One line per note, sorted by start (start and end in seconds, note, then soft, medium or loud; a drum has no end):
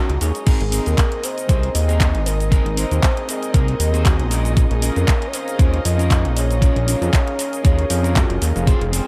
0.00 0.15 C#4 medium
0.00 0.15 D#4 medium
0.00 0.46 D#4 medium
0.00 0.15 F#4 medium
0.00 0.23 F#4 loud
0.00 0.16 A#4 loud
0.00 0.19 D#5 medium
0.00 0.46 D#5 medium
0.09 0.18 C#2 medium
0.09 closed hi-hat soft
0.21 0.32 D#2 medium
0.21 0.60 G#4 loud
0.21 0.45 C#5 medium
0.21 open hi-hat medium
0.21 cabasa medium
0.35 closed hi-hat soft
0.35 cabasa soft
0.46 0.58 G#1 soft
0.46 1.20 C4 medium
0.46 0.60 C4 loud
0.46 0.61 D#4 loud
0.46 8.68 D#4 medium
0.46 1.21 G#4 medium
0.46 0.61 G#4 loud
0.46 1.21 A#4 medium
0.46 0.61 A#4 loud
0.46 8.68 D#5 medium
0.46 1.21 D#5 medium
0.46 kick loud
0.46 closed hi-hat medium
0.46 crash medium
0.46 cabasa soft
0.61 0.80 G#1 loud
0.61 0.89 G#4 medium
0.61 closed hi-hat soft
0.71 0.97 C4 medium
0.71 0.98 D#4 medium
0.71 0.98 G#4 medium
0.71 0.98 A#4 medium
0.71 open hi-hat loud
0.71 cabasa medium
0.86 0.96 D#2 medium
0.86 1.25 A#4 loud
0.86 closed hi-hat soft
0.86 cabasa soft
0.98 kick loud
0.98 clap loud
0.98 closed hi-hat loud
0.98 cabasa soft
1.12 closed hi-hat soft
1.23 2.49 C4 medium
1.23 2.49 G#4 medium
1.23 2.49 A#4 medium
1.23 1.74 C5 loud
1.23 2.50 D#5 loud
1.23 muted clean electric guitar stroke soft
1.23 open hi-hat medium
1.23 cabasa medium
1.38 closed hi-hat soft
1.38 cabasa soft
1.48 1.70 C2 medium
1.48 1.68 C4 medium
1.48 1.69 D#4 medium
1.48 1.69 G#4 medium
1.48 1.69 C5 loud
1.48 kick loud
1.48 closed hi-hat loud
1.48 cabasa soft
1.63 closed hi-hat soft
1.75 2.16 D#2 loud
1.75 2.27 D#5 loud
1.75 open hi-hat loud
1.75 cabasa medium
1.88 2.20 C4 medium
1.88 2.20 D#4 medium
1.88 2.20 G#4 medium
1.88 2.21 A#4 loud
1.88 closed hi-hat soft
1.88 cabasa soft
2.00 kick loud
2.00 clap loud
2.00 closed hi-hat loud
2.00 cabasa soft
2.15 2.61 G#1 loud
2.15 closed hi-hat soft
2.26 2.79 A#4 loud
2.26 open hi-hat medium
2.26 cabasa medium
2.40 closed hi-hat soft
2.40 cabasa soft
2.50 2.65 C4 loud
2.50 3.25 C4 medium
2.50 2.66 D#4 loud
2.50 3.26 G#4 medium
2.50 2.66 G#4 loud
2.50 3.26 A#4 medium
2.50 2.66 A#4 loud
2.50 3.26 D#5 medium
2.50 kick loud
2.50 closed hi-hat medium
2.50 cabasa soft
2.66 2.85 G#1 loud
2.66 closed hi-hat soft
2.76 3.02 C4 medium
2.76 3.03 D#4 medium
2.76 3.03 G#4 medium
2.76 3.03 A#4 loud
2.76 3.30 C5 loud
2.76 open hi-hat loud
2.76 cabasa medium
2.91 3.01 D#2 medium
2.91 closed hi-hat soft
2.91 cabasa soft
3.03 kick loud
3.03 clap loud
3.03 closed hi-hat loud
3.03 cabasa soft
3.17 closed hi-hat soft
3.28 4.29 C4 medium
3.28 4.30 G#4 medium
3.28 3.54 G#4 medium
3.28 4.30 A#4 medium
3.28 4.30 D#5 medium
3.28 muted clean electric guitar stroke soft
3.28 open hi-hat loud
3.28 cabasa medium
3.43 closed hi-hat soft
3.43 cabasa soft
3.53 3.75 C2 medium
3.53 3.74 C4 medium
3.53 3.74 D#4 medium
3.53 3.74 G#4 medium
3.53 4.08 A#4 loud
3.53 3.75 A#4 loud
3.53 kick loud
3.53 closed hi-hat loud
3.53 cabasa soft
3.68 closed hi-hat soft
3.80 4.21 D#2 loud
3.80 open hi-hat loud
3.80 cabasa medium
3.93 4.25 C4 medium
3.93 4.25 D#4 medium
3.93 4.25 G#4 medium
3.93 4.26 C5 loud
3.93 closed hi-hat soft
3.93 cabasa soft
4.05 4.31 F#4 loud
4.05 kick loud
4.05 clap loud
4.05 closed hi-hat loud
4.05 cabasa soft
4.20 4.66 A#1 loud
4.20 closed hi-hat soft
4.30 4.73 C#4 medium
4.30 4.73 F4 medium
4.30 4.73 G#4 medium
4.30 4.69 G#4 loud
4.30 4.74 A#4 loud
4.30 open hi-hat loud
4.30 cabasa medium
4.45 closed hi-hat soft
4.45 cabasa soft
4.56 5.30 C#4 medium
4.56 5.31 G#4 medium
4.56 5.31 A#4 medium
4.56 5.31 F5 medium
4.56 kick loud
4.56 closed hi-hat medium
4.56 cabasa soft
4.71 4.90 A#1 loud
4.71 4.83 G#4 medium
4.71 closed hi-hat soft
4.81 5.08 C#4 medium
4.81 5.08 F4 medium
4.81 5.08 G#4 medium
4.81 5.09 A#4 loud
4.81 open hi-hat loud
4.81 cabasa medium
4.96 5.06 F2 medium
4.96 5.29 A#4 loud
4.96 closed hi-hat soft
4.96 cabasa soft
5.08 kick loud
5.08 clap loud
5.08 closed hi-hat medium
5.08 cabasa soft
5.22 closed hi-hat soft
5.27 5.35 C#5 medium
5.33 6.59 C#4 medium
5.33 6.59 G#4 medium
5.33 6.59 A#4 medium
5.33 5.85 C5 loud
5.33 6.60 F5 medium
5.33 muted clean electric guitar stroke soft
5.33 open hi-hat loud
5.33 cabasa medium
5.48 closed hi-hat soft
5.48 cabasa soft
5.58 5.80 D#2 medium
5.58 5.79 C#4 medium
5.58 5.79 F4 medium
5.58 5.79 G#4 medium
5.58 5.80 A#4 loud
5.58 kick loud
5.58 closed hi-hat medium
5.58 cabasa soft
5.74 closed hi-hat soft
5.85 6.26 F2 loud
5.85 6.38 D#5 loud
5.85 open hi-hat loud
5.85 cabasa medium
5.98 6.30 C#4 loud
5.98 6.30 F4 medium
5.98 6.31 G#4 medium
5.98 6.31 A#4 loud
5.98 closed hi-hat soft
5.98 cabasa soft
6.11 kick loud
6.11 clap loud
6.11 closed hi-hat medium
6.11 cabasa soft
6.25 6.71 A#1 loud
6.25 closed hi-hat soft
6.37 7.13 C#5 loud
6.37 open hi-hat loud
6.37 cabasa medium
6.51 closed hi-hat soft
6.51 cabasa soft
6.61 6.75 C#4 loud
6.61 7.36 C#4 medium
6.61 6.76 F4 loud
6.61 7.36 G#4 medium
6.61 6.76 G#4 loud
6.61 7.36 A#4 medium
6.61 6.76 A#4 loud
6.61 7.37 F5 loud
6.61 kick loud
6.61 closed hi-hat medium
6.61 cabasa soft
6.76 6.96 A#1 loud
6.76 closed hi-hat soft
6.86 7.13 C#4 medium
6.86 7.13 F4 medium
6.86 7.13 G#4 medium
6.86 7.14 A#4 medium
6.86 open hi-hat loud
6.86 cabasa medium
7.02 7.11 F2 medium
7.02 closed hi-hat soft
7.02 cabasa soft
7.13 7.61 C#5 loud
7.13 kick loud
7.13 clap loud
7.13 closed hi-hat medium
7.13 cabasa soft
7.27 closed hi-hat soft
7.38 8.64 C#4 medium
7.38 8.64 G#4 medium
7.38 8.64 A#4 medium
7.38 8.65 F5 loud
7.38 muted clean electric guitar stroke soft
7.38 open hi-hat loud
7.38 cabasa medium
7.53 closed hi-hat soft
7.53 cabasa soft
7.64 7.85 D#2 medium
7.64 7.84 C#4 medium
7.64 7.84 F4 medium
7.64 7.85 G#4 medium
7.64 7.85 A#4 loud
7.64 8.18 C#5 loud
7.64 kick loud
7.64 closed hi-hat medium
7.64 cabasa soft
7.79 closed hi-hat soft
7.90 8.25 F2 loud
7.90 open hi-hat loud
7.90 cabasa medium
8.03 8.35 C#4 medium
8.03 8.35 F4 medium
8.03 8.36 G#4 medium
8.03 8.36 A#4 loud
8.03 closed hi-hat soft
8.03 cabasa soft
8.16 8.43 F#4 medium
8.16 kick loud
8.16 clap loud
8.16 closed hi-hat medium
8.16 cabasa soft
8.30 8.39 F1 medium
8.30 closed hi-hat soft
8.42 8.53 D#2 medium
8.42 8.81 G#4 medium
8.42 open hi-hat loud
8.42 cabasa medium
8.56 8.75 F1 medium
8.56 closed hi-hat soft
8.56 cabasa soft
8.66 8.81 C4 loud
8.66 9.07 C4 medium
8.66 9.07 F4 medium
8.66 8.81 F4 loud
8.66 9.07 G#4 medium
8.66 8.81 G#4 loud
8.66 9.07 C5 medium
8.66 8.82 C5 loud
8.66 9.07 F5 medium
8.66 kick loud
8.66 closed hi-hat medium
8.66 cabasa soft
8.81 9.01 F1 loud
8.81 9.07 G#4 medium
8.81 closed hi-hat soft
8.92 9.07 C4 medium
8.92 9.07 F4 medium
8.92 9.07 G#4 medium
8.92 9.07 C5 loud
8.92 open hi-hat loud
8.92 cabasa medium